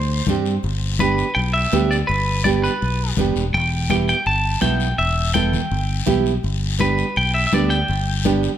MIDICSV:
0, 0, Header, 1, 5, 480
1, 0, Start_track
1, 0, Key_signature, 1, "major"
1, 0, Tempo, 362319
1, 847, Time_signature, 4, 2, 24, 8
1, 11365, End_track
2, 0, Start_track
2, 0, Title_t, "Clean electric guitar"
2, 0, Program_c, 0, 27
2, 0, Note_on_c, 0, 72, 75
2, 365, Note_off_c, 0, 72, 0
2, 1327, Note_on_c, 0, 71, 88
2, 1784, Note_on_c, 0, 79, 116
2, 1822, Note_off_c, 0, 71, 0
2, 1852, Note_off_c, 0, 79, 0
2, 2033, Note_on_c, 0, 76, 107
2, 2525, Note_on_c, 0, 74, 93
2, 2536, Note_off_c, 0, 76, 0
2, 2592, Note_off_c, 0, 74, 0
2, 2745, Note_on_c, 0, 71, 84
2, 3203, Note_off_c, 0, 71, 0
2, 3234, Note_on_c, 0, 74, 96
2, 3301, Note_off_c, 0, 74, 0
2, 3491, Note_on_c, 0, 71, 76
2, 4160, Note_off_c, 0, 71, 0
2, 4693, Note_on_c, 0, 79, 97
2, 5138, Note_off_c, 0, 79, 0
2, 5173, Note_on_c, 0, 79, 99
2, 5239, Note_off_c, 0, 79, 0
2, 5420, Note_on_c, 0, 79, 88
2, 5638, Note_off_c, 0, 79, 0
2, 5653, Note_on_c, 0, 81, 107
2, 6111, Note_off_c, 0, 81, 0
2, 6117, Note_on_c, 0, 79, 92
2, 6569, Note_off_c, 0, 79, 0
2, 6603, Note_on_c, 0, 76, 86
2, 7070, Note_off_c, 0, 76, 0
2, 7075, Note_on_c, 0, 79, 80
2, 8229, Note_off_c, 0, 79, 0
2, 9016, Note_on_c, 0, 71, 88
2, 9502, Note_on_c, 0, 79, 102
2, 9506, Note_off_c, 0, 71, 0
2, 9722, Note_off_c, 0, 79, 0
2, 9727, Note_on_c, 0, 76, 93
2, 9876, Note_off_c, 0, 76, 0
2, 9892, Note_on_c, 0, 76, 81
2, 9960, Note_off_c, 0, 76, 0
2, 9992, Note_on_c, 0, 74, 99
2, 10203, Note_on_c, 0, 79, 105
2, 10226, Note_off_c, 0, 74, 0
2, 11365, Note_off_c, 0, 79, 0
2, 11365, End_track
3, 0, Start_track
3, 0, Title_t, "Nylon-string guitar"
3, 0, Program_c, 1, 24
3, 369, Note_on_c, 1, 60, 93
3, 377, Note_on_c, 1, 62, 82
3, 383, Note_on_c, 1, 67, 105
3, 704, Note_off_c, 1, 60, 0
3, 708, Note_off_c, 1, 62, 0
3, 711, Note_off_c, 1, 67, 0
3, 1324, Note_on_c, 1, 59, 68
3, 1331, Note_on_c, 1, 62, 65
3, 1336, Note_on_c, 1, 67, 81
3, 1662, Note_off_c, 1, 59, 0
3, 1666, Note_off_c, 1, 62, 0
3, 1668, Note_off_c, 1, 67, 0
3, 2282, Note_on_c, 1, 59, 84
3, 2289, Note_on_c, 1, 62, 74
3, 2296, Note_on_c, 1, 67, 88
3, 2622, Note_off_c, 1, 59, 0
3, 2625, Note_off_c, 1, 62, 0
3, 2628, Note_off_c, 1, 67, 0
3, 3244, Note_on_c, 1, 59, 72
3, 3253, Note_on_c, 1, 62, 63
3, 3254, Note_on_c, 1, 67, 76
3, 3584, Note_off_c, 1, 59, 0
3, 3586, Note_off_c, 1, 62, 0
3, 3588, Note_off_c, 1, 67, 0
3, 4211, Note_on_c, 1, 59, 94
3, 4220, Note_on_c, 1, 62, 86
3, 4225, Note_on_c, 1, 67, 106
3, 4547, Note_off_c, 1, 59, 0
3, 4551, Note_off_c, 1, 62, 0
3, 4552, Note_off_c, 1, 67, 0
3, 5162, Note_on_c, 1, 59, 66
3, 5166, Note_on_c, 1, 64, 63
3, 5173, Note_on_c, 1, 67, 70
3, 5502, Note_off_c, 1, 59, 0
3, 5505, Note_off_c, 1, 64, 0
3, 5506, Note_off_c, 1, 67, 0
3, 6105, Note_on_c, 1, 59, 84
3, 6112, Note_on_c, 1, 64, 73
3, 6118, Note_on_c, 1, 66, 89
3, 6454, Note_off_c, 1, 59, 0
3, 6457, Note_off_c, 1, 64, 0
3, 6460, Note_off_c, 1, 66, 0
3, 7076, Note_on_c, 1, 59, 67
3, 7084, Note_on_c, 1, 64, 66
3, 7090, Note_on_c, 1, 69, 82
3, 7419, Note_off_c, 1, 59, 0
3, 7423, Note_off_c, 1, 64, 0
3, 7426, Note_off_c, 1, 69, 0
3, 8031, Note_on_c, 1, 59, 98
3, 8035, Note_on_c, 1, 64, 95
3, 8043, Note_on_c, 1, 67, 104
3, 8376, Note_off_c, 1, 59, 0
3, 8379, Note_off_c, 1, 64, 0
3, 8380, Note_off_c, 1, 67, 0
3, 8991, Note_on_c, 1, 59, 76
3, 9000, Note_on_c, 1, 67, 77
3, 9001, Note_on_c, 1, 62, 59
3, 9337, Note_off_c, 1, 59, 0
3, 9338, Note_off_c, 1, 62, 0
3, 9340, Note_off_c, 1, 67, 0
3, 9972, Note_on_c, 1, 59, 82
3, 9978, Note_on_c, 1, 62, 81
3, 9979, Note_on_c, 1, 67, 94
3, 10306, Note_off_c, 1, 59, 0
3, 10307, Note_off_c, 1, 62, 0
3, 10309, Note_off_c, 1, 67, 0
3, 10926, Note_on_c, 1, 59, 82
3, 10932, Note_on_c, 1, 62, 84
3, 10941, Note_on_c, 1, 67, 92
3, 11263, Note_off_c, 1, 59, 0
3, 11264, Note_off_c, 1, 62, 0
3, 11270, Note_off_c, 1, 67, 0
3, 11365, End_track
4, 0, Start_track
4, 0, Title_t, "Fingered electric bass"
4, 0, Program_c, 2, 33
4, 0, Note_on_c, 2, 38, 105
4, 273, Note_off_c, 2, 38, 0
4, 372, Note_on_c, 2, 43, 96
4, 754, Note_off_c, 2, 43, 0
4, 846, Note_on_c, 2, 31, 114
4, 1615, Note_off_c, 2, 31, 0
4, 1805, Note_on_c, 2, 35, 101
4, 2191, Note_off_c, 2, 35, 0
4, 2291, Note_on_c, 2, 38, 99
4, 2674, Note_off_c, 2, 38, 0
4, 2774, Note_on_c, 2, 31, 108
4, 3541, Note_off_c, 2, 31, 0
4, 3740, Note_on_c, 2, 35, 99
4, 4120, Note_off_c, 2, 35, 0
4, 4217, Note_on_c, 2, 30, 91
4, 4430, Note_off_c, 2, 30, 0
4, 4451, Note_on_c, 2, 28, 84
4, 4667, Note_off_c, 2, 28, 0
4, 4692, Note_on_c, 2, 28, 120
4, 5459, Note_off_c, 2, 28, 0
4, 5648, Note_on_c, 2, 31, 95
4, 6033, Note_off_c, 2, 31, 0
4, 6130, Note_on_c, 2, 35, 100
4, 6514, Note_off_c, 2, 35, 0
4, 6605, Note_on_c, 2, 28, 114
4, 7375, Note_off_c, 2, 28, 0
4, 7571, Note_on_c, 2, 31, 103
4, 7954, Note_off_c, 2, 31, 0
4, 8058, Note_on_c, 2, 35, 97
4, 8438, Note_off_c, 2, 35, 0
4, 8532, Note_on_c, 2, 31, 114
4, 9298, Note_off_c, 2, 31, 0
4, 9498, Note_on_c, 2, 35, 103
4, 9878, Note_off_c, 2, 35, 0
4, 9978, Note_on_c, 2, 38, 97
4, 10358, Note_off_c, 2, 38, 0
4, 10458, Note_on_c, 2, 31, 113
4, 11221, Note_off_c, 2, 31, 0
4, 11365, End_track
5, 0, Start_track
5, 0, Title_t, "Drums"
5, 355, Note_on_c, 9, 63, 84
5, 355, Note_on_c, 9, 64, 82
5, 372, Note_on_c, 9, 73, 69
5, 487, Note_off_c, 9, 63, 0
5, 487, Note_off_c, 9, 64, 0
5, 504, Note_off_c, 9, 73, 0
5, 604, Note_on_c, 9, 73, 67
5, 737, Note_off_c, 9, 73, 0
5, 836, Note_on_c, 9, 63, 36
5, 848, Note_on_c, 9, 74, 73
5, 969, Note_off_c, 9, 63, 0
5, 980, Note_off_c, 9, 74, 0
5, 1314, Note_on_c, 9, 63, 92
5, 1329, Note_on_c, 9, 73, 71
5, 1446, Note_off_c, 9, 63, 0
5, 1461, Note_off_c, 9, 73, 0
5, 1567, Note_on_c, 9, 73, 70
5, 1699, Note_off_c, 9, 73, 0
5, 1807, Note_on_c, 9, 63, 32
5, 1809, Note_on_c, 9, 74, 66
5, 1940, Note_off_c, 9, 63, 0
5, 1941, Note_off_c, 9, 74, 0
5, 2294, Note_on_c, 9, 63, 75
5, 2294, Note_on_c, 9, 73, 73
5, 2426, Note_off_c, 9, 63, 0
5, 2427, Note_off_c, 9, 73, 0
5, 2538, Note_on_c, 9, 73, 68
5, 2671, Note_off_c, 9, 73, 0
5, 2770, Note_on_c, 9, 74, 73
5, 2777, Note_on_c, 9, 63, 38
5, 2903, Note_off_c, 9, 74, 0
5, 2909, Note_off_c, 9, 63, 0
5, 3247, Note_on_c, 9, 63, 94
5, 3263, Note_on_c, 9, 73, 77
5, 3380, Note_off_c, 9, 63, 0
5, 3395, Note_off_c, 9, 73, 0
5, 3504, Note_on_c, 9, 73, 70
5, 3637, Note_off_c, 9, 73, 0
5, 3732, Note_on_c, 9, 63, 30
5, 3739, Note_on_c, 9, 74, 67
5, 3864, Note_off_c, 9, 63, 0
5, 3871, Note_off_c, 9, 74, 0
5, 4200, Note_on_c, 9, 63, 84
5, 4200, Note_on_c, 9, 64, 76
5, 4213, Note_on_c, 9, 73, 71
5, 4333, Note_off_c, 9, 63, 0
5, 4333, Note_off_c, 9, 64, 0
5, 4345, Note_off_c, 9, 73, 0
5, 4450, Note_on_c, 9, 73, 67
5, 4582, Note_off_c, 9, 73, 0
5, 4685, Note_on_c, 9, 63, 39
5, 4701, Note_on_c, 9, 74, 65
5, 4817, Note_off_c, 9, 63, 0
5, 4834, Note_off_c, 9, 74, 0
5, 5163, Note_on_c, 9, 63, 96
5, 5172, Note_on_c, 9, 73, 68
5, 5295, Note_off_c, 9, 63, 0
5, 5305, Note_off_c, 9, 73, 0
5, 5412, Note_on_c, 9, 73, 74
5, 5544, Note_off_c, 9, 73, 0
5, 5645, Note_on_c, 9, 63, 35
5, 5645, Note_on_c, 9, 74, 66
5, 5778, Note_off_c, 9, 63, 0
5, 5778, Note_off_c, 9, 74, 0
5, 6118, Note_on_c, 9, 63, 81
5, 6132, Note_on_c, 9, 73, 74
5, 6250, Note_off_c, 9, 63, 0
5, 6264, Note_off_c, 9, 73, 0
5, 6360, Note_on_c, 9, 73, 71
5, 6492, Note_off_c, 9, 73, 0
5, 6601, Note_on_c, 9, 63, 36
5, 6612, Note_on_c, 9, 74, 74
5, 6733, Note_off_c, 9, 63, 0
5, 6745, Note_off_c, 9, 74, 0
5, 7087, Note_on_c, 9, 63, 96
5, 7095, Note_on_c, 9, 73, 68
5, 7219, Note_off_c, 9, 63, 0
5, 7227, Note_off_c, 9, 73, 0
5, 7328, Note_on_c, 9, 64, 71
5, 7334, Note_on_c, 9, 73, 72
5, 7460, Note_off_c, 9, 64, 0
5, 7466, Note_off_c, 9, 73, 0
5, 7567, Note_on_c, 9, 63, 34
5, 7572, Note_on_c, 9, 74, 74
5, 7700, Note_off_c, 9, 63, 0
5, 7705, Note_off_c, 9, 74, 0
5, 8046, Note_on_c, 9, 63, 86
5, 8046, Note_on_c, 9, 64, 82
5, 8051, Note_on_c, 9, 73, 72
5, 8178, Note_off_c, 9, 63, 0
5, 8178, Note_off_c, 9, 64, 0
5, 8183, Note_off_c, 9, 73, 0
5, 8294, Note_on_c, 9, 73, 64
5, 8426, Note_off_c, 9, 73, 0
5, 8523, Note_on_c, 9, 63, 38
5, 8536, Note_on_c, 9, 74, 72
5, 8656, Note_off_c, 9, 63, 0
5, 8669, Note_off_c, 9, 74, 0
5, 9010, Note_on_c, 9, 63, 98
5, 9012, Note_on_c, 9, 73, 76
5, 9142, Note_off_c, 9, 63, 0
5, 9145, Note_off_c, 9, 73, 0
5, 9247, Note_on_c, 9, 73, 67
5, 9380, Note_off_c, 9, 73, 0
5, 9490, Note_on_c, 9, 74, 64
5, 9491, Note_on_c, 9, 63, 33
5, 9622, Note_off_c, 9, 74, 0
5, 9623, Note_off_c, 9, 63, 0
5, 9963, Note_on_c, 9, 73, 75
5, 9972, Note_on_c, 9, 63, 82
5, 10096, Note_off_c, 9, 73, 0
5, 10105, Note_off_c, 9, 63, 0
5, 10205, Note_on_c, 9, 73, 66
5, 10338, Note_off_c, 9, 73, 0
5, 10444, Note_on_c, 9, 74, 75
5, 10458, Note_on_c, 9, 63, 38
5, 10576, Note_off_c, 9, 74, 0
5, 10590, Note_off_c, 9, 63, 0
5, 10930, Note_on_c, 9, 73, 74
5, 10932, Note_on_c, 9, 63, 93
5, 11062, Note_off_c, 9, 73, 0
5, 11065, Note_off_c, 9, 63, 0
5, 11172, Note_on_c, 9, 73, 68
5, 11305, Note_off_c, 9, 73, 0
5, 11365, End_track
0, 0, End_of_file